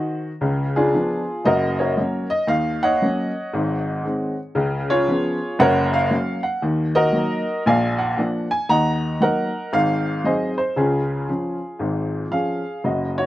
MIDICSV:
0, 0, Header, 1, 2, 480
1, 0, Start_track
1, 0, Tempo, 518135
1, 374, Time_signature, 4, 2, 24, 8
1, 12284, End_track
2, 0, Start_track
2, 0, Title_t, "Upright piano"
2, 0, Program_c, 0, 0
2, 0, Note_on_c, 0, 51, 67
2, 0, Note_on_c, 0, 66, 56
2, 0, Note_on_c, 0, 72, 66
2, 0, Note_on_c, 0, 75, 70
2, 0, Note_on_c, 0, 80, 98
2, 176, Note_off_c, 0, 75, 0
2, 177, Note_off_c, 0, 72, 0
2, 211, Note_off_c, 0, 80, 0
2, 279, Note_off_c, 0, 51, 0
2, 287, Note_off_c, 0, 66, 0
2, 380, Note_on_c, 0, 37, 62
2, 384, Note_on_c, 0, 49, 70
2, 574, Control_c, 0, 64, 127
2, 705, Note_on_c, 0, 68, 82
2, 711, Note_on_c, 0, 65, 71
2, 714, Note_on_c, 0, 62, 66
2, 787, Note_off_c, 0, 37, 0
2, 789, Note_off_c, 0, 49, 0
2, 865, Control_c, 0, 64, 0
2, 866, Note_off_c, 0, 62, 0
2, 873, Note_on_c, 0, 53, 43
2, 878, Note_on_c, 0, 59, 41
2, 880, Note_on_c, 0, 62, 52
2, 1133, Note_off_c, 0, 53, 0
2, 1137, Note_off_c, 0, 59, 0
2, 1138, Note_off_c, 0, 62, 0
2, 1315, Note_off_c, 0, 65, 0
2, 1340, Note_on_c, 0, 30, 60
2, 1347, Note_on_c, 0, 75, 96
2, 1349, Note_off_c, 0, 68, 0
2, 1349, Note_on_c, 0, 42, 76
2, 1361, Note_on_c, 0, 70, 69
2, 1362, Note_on_c, 0, 66, 76
2, 1531, Control_c, 0, 64, 127
2, 1636, Note_off_c, 0, 70, 0
2, 1637, Note_off_c, 0, 66, 0
2, 1650, Note_off_c, 0, 75, 0
2, 1657, Note_on_c, 0, 73, 63
2, 1669, Note_on_c, 0, 70, 52
2, 1674, Note_on_c, 0, 66, 54
2, 1748, Note_off_c, 0, 30, 0
2, 1753, Note_off_c, 0, 42, 0
2, 1827, Control_c, 0, 64, 0
2, 1828, Note_on_c, 0, 54, 37
2, 1833, Note_on_c, 0, 58, 35
2, 1835, Note_on_c, 0, 61, 42
2, 2090, Note_off_c, 0, 54, 0
2, 2094, Note_off_c, 0, 58, 0
2, 2095, Note_off_c, 0, 61, 0
2, 2105, Note_off_c, 0, 70, 0
2, 2108, Note_off_c, 0, 66, 0
2, 2131, Note_on_c, 0, 75, 96
2, 2132, Note_off_c, 0, 73, 0
2, 2289, Note_on_c, 0, 39, 64
2, 2291, Note_on_c, 0, 51, 77
2, 2301, Note_on_c, 0, 77, 92
2, 2302, Note_off_c, 0, 75, 0
2, 2484, Control_c, 0, 64, 127
2, 2607, Note_off_c, 0, 77, 0
2, 2620, Note_on_c, 0, 78, 103
2, 2629, Note_on_c, 0, 73, 65
2, 2632, Note_on_c, 0, 75, 84
2, 2702, Note_off_c, 0, 39, 0
2, 2703, Note_off_c, 0, 51, 0
2, 2788, Control_c, 0, 64, 0
2, 2799, Note_on_c, 0, 54, 43
2, 2801, Note_on_c, 0, 61, 51
2, 2803, Note_on_c, 0, 58, 45
2, 3058, Note_off_c, 0, 54, 0
2, 3059, Note_off_c, 0, 61, 0
2, 3061, Note_off_c, 0, 58, 0
2, 3275, Note_on_c, 0, 32, 68
2, 3276, Note_on_c, 0, 44, 73
2, 3453, Control_c, 0, 64, 127
2, 3677, Note_off_c, 0, 32, 0
2, 3678, Note_off_c, 0, 44, 0
2, 3743, Note_on_c, 0, 51, 38
2, 3746, Note_on_c, 0, 56, 45
2, 3749, Note_on_c, 0, 60, 47
2, 3750, Control_c, 0, 64, 0
2, 4006, Note_off_c, 0, 51, 0
2, 4008, Note_off_c, 0, 56, 0
2, 4011, Note_off_c, 0, 60, 0
2, 4022, Note_off_c, 0, 73, 0
2, 4023, Note_off_c, 0, 75, 0
2, 4054, Note_off_c, 0, 78, 0
2, 4216, Note_on_c, 0, 49, 80
2, 4221, Note_on_c, 0, 37, 68
2, 4404, Control_c, 0, 64, 127
2, 4540, Note_on_c, 0, 73, 99
2, 4547, Note_on_c, 0, 68, 80
2, 4550, Note_on_c, 0, 65, 76
2, 4626, Note_off_c, 0, 49, 0
2, 4629, Note_off_c, 0, 37, 0
2, 4707, Note_on_c, 0, 53, 43
2, 4708, Control_c, 0, 64, 0
2, 4713, Note_on_c, 0, 59, 47
2, 4713, Note_on_c, 0, 61, 54
2, 4969, Note_off_c, 0, 53, 0
2, 4973, Note_off_c, 0, 59, 0
2, 4973, Note_off_c, 0, 61, 0
2, 5153, Note_off_c, 0, 68, 0
2, 5155, Note_off_c, 0, 65, 0
2, 5180, Note_on_c, 0, 30, 85
2, 5182, Note_on_c, 0, 42, 87
2, 5186, Note_off_c, 0, 73, 0
2, 5187, Note_on_c, 0, 78, 118
2, 5200, Note_on_c, 0, 73, 81
2, 5202, Note_on_c, 0, 70, 90
2, 5349, Control_c, 0, 64, 127
2, 5476, Note_off_c, 0, 73, 0
2, 5477, Note_off_c, 0, 70, 0
2, 5490, Note_off_c, 0, 78, 0
2, 5499, Note_on_c, 0, 77, 93
2, 5587, Note_off_c, 0, 30, 0
2, 5589, Note_off_c, 0, 42, 0
2, 5659, Note_on_c, 0, 54, 44
2, 5659, Note_on_c, 0, 61, 40
2, 5664, Note_on_c, 0, 58, 38
2, 5671, Control_c, 0, 64, 0
2, 5923, Note_off_c, 0, 54, 0
2, 5923, Note_off_c, 0, 61, 0
2, 5926, Note_off_c, 0, 58, 0
2, 5958, Note_on_c, 0, 78, 82
2, 5972, Note_off_c, 0, 77, 0
2, 6135, Note_off_c, 0, 78, 0
2, 6135, Note_on_c, 0, 51, 76
2, 6137, Note_on_c, 0, 39, 65
2, 6321, Control_c, 0, 64, 127
2, 6439, Note_on_c, 0, 75, 105
2, 6445, Note_on_c, 0, 70, 85
2, 6450, Note_on_c, 0, 66, 83
2, 6544, Note_off_c, 0, 51, 0
2, 6545, Note_off_c, 0, 39, 0
2, 6603, Note_on_c, 0, 54, 45
2, 6612, Note_on_c, 0, 58, 44
2, 6616, Note_on_c, 0, 63, 50
2, 6630, Control_c, 0, 64, 0
2, 6871, Note_off_c, 0, 54, 0
2, 6877, Note_off_c, 0, 58, 0
2, 6880, Note_off_c, 0, 63, 0
2, 7060, Note_off_c, 0, 70, 0
2, 7063, Note_off_c, 0, 66, 0
2, 7094, Note_off_c, 0, 75, 0
2, 7095, Note_on_c, 0, 46, 85
2, 7100, Note_on_c, 0, 34, 83
2, 7107, Note_on_c, 0, 80, 91
2, 7114, Note_on_c, 0, 77, 85
2, 7122, Note_on_c, 0, 74, 75
2, 7279, Control_c, 0, 64, 127
2, 7391, Note_off_c, 0, 77, 0
2, 7395, Note_off_c, 0, 74, 0
2, 7397, Note_on_c, 0, 78, 82
2, 7408, Note_off_c, 0, 80, 0
2, 7503, Note_off_c, 0, 46, 0
2, 7506, Note_off_c, 0, 34, 0
2, 7571, Note_on_c, 0, 53, 43
2, 7581, Note_on_c, 0, 58, 47
2, 7584, Control_c, 0, 64, 0
2, 7586, Note_on_c, 0, 62, 46
2, 7836, Note_off_c, 0, 53, 0
2, 7843, Note_off_c, 0, 58, 0
2, 7847, Note_off_c, 0, 62, 0
2, 7879, Note_off_c, 0, 78, 0
2, 7883, Note_on_c, 0, 80, 93
2, 8052, Note_on_c, 0, 51, 70
2, 8053, Note_on_c, 0, 39, 64
2, 8055, Note_on_c, 0, 82, 100
2, 8056, Note_off_c, 0, 80, 0
2, 8062, Note_on_c, 0, 78, 79
2, 8068, Note_on_c, 0, 75, 73
2, 8255, Control_c, 0, 64, 127
2, 8460, Note_off_c, 0, 51, 0
2, 8461, Note_off_c, 0, 39, 0
2, 8504, Note_off_c, 0, 78, 0
2, 8507, Note_off_c, 0, 75, 0
2, 8528, Note_on_c, 0, 54, 44
2, 8534, Note_off_c, 0, 82, 0
2, 8534, Note_on_c, 0, 58, 37
2, 8540, Note_on_c, 0, 78, 91
2, 8541, Note_on_c, 0, 63, 49
2, 8543, Control_c, 0, 64, 0
2, 8552, Note_on_c, 0, 70, 69
2, 8552, Note_on_c, 0, 75, 58
2, 8793, Note_off_c, 0, 54, 0
2, 8798, Note_off_c, 0, 58, 0
2, 8803, Note_off_c, 0, 63, 0
2, 8989, Note_off_c, 0, 70, 0
2, 8989, Note_off_c, 0, 75, 0
2, 9012, Note_on_c, 0, 32, 73
2, 9013, Note_on_c, 0, 44, 77
2, 9016, Note_off_c, 0, 78, 0
2, 9018, Note_on_c, 0, 77, 99
2, 9182, Control_c, 0, 64, 127
2, 9420, Note_off_c, 0, 32, 0
2, 9420, Note_off_c, 0, 44, 0
2, 9489, Note_on_c, 0, 54, 35
2, 9494, Note_on_c, 0, 60, 45
2, 9495, Note_off_c, 0, 77, 0
2, 9498, Note_on_c, 0, 75, 75
2, 9500, Control_c, 0, 64, 0
2, 9503, Note_on_c, 0, 63, 40
2, 9505, Note_on_c, 0, 68, 60
2, 9509, Note_on_c, 0, 72, 60
2, 9753, Note_off_c, 0, 54, 0
2, 9757, Note_off_c, 0, 60, 0
2, 9763, Note_off_c, 0, 63, 0
2, 9784, Note_off_c, 0, 68, 0
2, 9785, Note_off_c, 0, 72, 0
2, 9799, Note_on_c, 0, 72, 76
2, 9801, Note_off_c, 0, 75, 0
2, 9971, Note_on_c, 0, 49, 67
2, 9972, Note_off_c, 0, 72, 0
2, 9973, Note_on_c, 0, 37, 54
2, 9980, Note_on_c, 0, 68, 73
2, 9985, Note_on_c, 0, 61, 58
2, 9990, Note_on_c, 0, 65, 54
2, 10164, Control_c, 0, 64, 127
2, 10378, Note_off_c, 0, 49, 0
2, 10379, Note_off_c, 0, 37, 0
2, 10446, Note_off_c, 0, 61, 0
2, 10456, Note_on_c, 0, 53, 34
2, 10460, Note_on_c, 0, 61, 44
2, 10464, Control_c, 0, 64, 0
2, 10718, Note_off_c, 0, 53, 0
2, 10721, Note_off_c, 0, 61, 0
2, 10926, Note_on_c, 0, 44, 57
2, 10932, Note_on_c, 0, 32, 60
2, 11336, Note_off_c, 0, 44, 0
2, 11339, Note_off_c, 0, 32, 0
2, 11403, Note_on_c, 0, 53, 36
2, 11409, Note_on_c, 0, 61, 45
2, 11410, Note_on_c, 0, 77, 73
2, 11415, Note_off_c, 0, 68, 0
2, 11429, Note_on_c, 0, 68, 48
2, 11668, Note_off_c, 0, 53, 0
2, 11673, Note_off_c, 0, 61, 0
2, 11688, Note_off_c, 0, 65, 0
2, 11866, Note_off_c, 0, 68, 0
2, 11890, Note_off_c, 0, 77, 0
2, 11896, Note_on_c, 0, 42, 47
2, 11897, Note_on_c, 0, 30, 52
2, 11902, Note_on_c, 0, 75, 62
2, 11915, Note_on_c, 0, 66, 53
2, 12069, Control_c, 0, 64, 127
2, 12189, Note_off_c, 0, 66, 0
2, 12203, Note_off_c, 0, 75, 0
2, 12209, Note_on_c, 0, 73, 82
2, 12220, Note_on_c, 0, 66, 57
2, 12278, Note_off_c, 0, 30, 0
2, 12278, Note_off_c, 0, 42, 0
2, 12284, Note_off_c, 0, 66, 0
2, 12284, Note_off_c, 0, 73, 0
2, 12284, End_track
0, 0, End_of_file